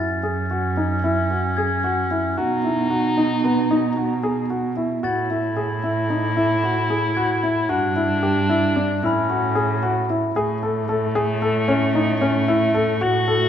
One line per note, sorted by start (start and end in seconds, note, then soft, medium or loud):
0.00 2.38 F#2 medium
0.00 2.40 C#4 medium
0.00 0.18 E4 medium
0.00 1.31 A6 soft
0.23 0.45 G#4 medium
0.51 0.72 F#4 medium
0.77 0.99 D#4 medium
1.04 1.25 E4 medium
1.31 1.52 F#4 medium
1.57 1.79 G#4 medium
1.57 2.59 G#6 medium
1.84 2.05 F#4 medium
2.11 2.32 E4 medium
2.36 5.05 B2 medium
2.36 4.77 D#4 loud
2.36 2.59 F#4 medium
2.64 2.85 E4 medium
2.90 3.12 F#4 medium
3.17 3.39 D#4 medium
3.44 3.65 B3 medium
3.71 3.92 D#4 medium
3.97 4.18 F#4 medium
4.23 4.45 G#4 medium
4.50 4.72 F#4 medium
4.77 4.98 E4 medium
5.03 7.72 A2 medium
5.03 7.71 E4 loud
5.03 5.25 F#4 medium
5.03 6.39 A6 soft
5.30 5.51 E4 medium
5.57 5.78 G#4 medium
5.84 6.05 E4 medium
6.10 6.31 D#4 medium
6.37 6.58 E4 medium
6.63 6.85 F#4 medium
6.90 7.11 G#4 medium
7.15 7.38 F#4 medium
7.15 7.92 G#6 soft
7.43 7.65 E4 medium
7.69 9.05 G2 medium
7.69 9.07 D4 loud
7.69 7.91 F#4 medium
7.96 8.18 E4 medium
8.23 8.44 G4 medium
8.49 8.71 E4 medium
8.76 8.98 D4 medium
9.03 10.33 A2 medium
9.03 10.10 C#4 medium
9.03 9.24 E4 medium
9.03 10.39 B5 medium
9.30 9.51 F#4 medium
9.55 9.77 G#4 medium
9.83 10.04 F#4 medium
10.10 10.31 E4 medium
10.36 13.01 A2 medium
10.36 13.05 A3 medium
10.36 10.57 G#4 medium
10.63 10.84 A4 medium
10.89 11.10 A4 medium
11.15 11.37 G#4 medium
11.42 11.63 A4 medium
11.68 11.90 C#4 medium
11.95 12.17 D#4 medium
12.21 12.43 C#4 medium
12.48 12.70 E4 medium
12.74 12.96 A4 medium
13.01 13.49 A2 medium
13.01 13.23 F#4 medium
13.01 13.49 F#4 loud
13.28 13.49 A4 medium